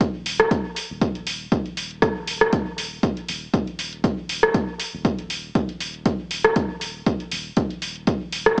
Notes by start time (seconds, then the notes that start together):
Already playing: D#1
0.01 kick, closed hi-hat
0.26 open hi-hat
0.40 cross-stick, closed hi-hat
0.51 kick, closed hi-hat
0.76 open hi-hat
0.90 D#1
1.01 kick, closed hi-hat
1.15 closed hi-hat
1.27 open hi-hat
1.52 D#1, kick, closed hi-hat
1.66 closed hi-hat
1.77 open hi-hat
1.91 closed hi-hat
2.02 kick, cross-stick, closed hi-hat
2.27 open hi-hat
2.41 cross-stick
2.53 D#1, kick, closed hi-hat
2.78 open hi-hat
3.03 D#1, kick, closed hi-hat
3.17 closed hi-hat
3.28 D#1, open hi-hat
3.54 D#1, kick, closed hi-hat
3.67 closed hi-hat
3.79 open hi-hat
3.93 closed hi-hat
4.04 kick, closed hi-hat
4.29 open hi-hat
4.43 cross-stick
4.54 kick, closed hi-hat
4.80 open hi-hat
4.93 D#1
5.05 kick, closed hi-hat
5.19 closed hi-hat
5.30 open hi-hat
5.55 D#1, kick, closed hi-hat
5.69 closed hi-hat
5.80 open hi-hat
5.94 closed hi-hat
6.06 kick, closed hi-hat
6.31 open hi-hat
6.45 cross-stick, closed hi-hat
6.56 D#1, kick, closed hi-hat
6.81 open hi-hat
7.06 D#1, kick, closed hi-hat
7.20 closed hi-hat
7.31 D#1, open hi-hat
7.57 D#1, kick, closed hi-hat
7.70 closed hi-hat
7.82 open hi-hat
7.96 closed hi-hat
8.07 kick, closed hi-hat
8.32 open hi-hat
8.46 cross-stick, closed hi-hat